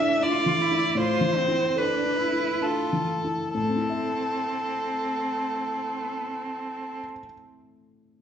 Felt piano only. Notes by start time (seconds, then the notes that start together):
Already playing: A2 E3 D4 A4
0.00 E4
0.21 D4
0.46 E3
0.71 E4
0.95 A2
1.21 E3
1.48 E4
1.76 A4
2.04 D4
2.32 E4
2.61 D4
2.93 E3
3.24 E4
3.54 A2
3.62 A3
3.69 C4
3.76 E4
3.83 A4
3.90 E5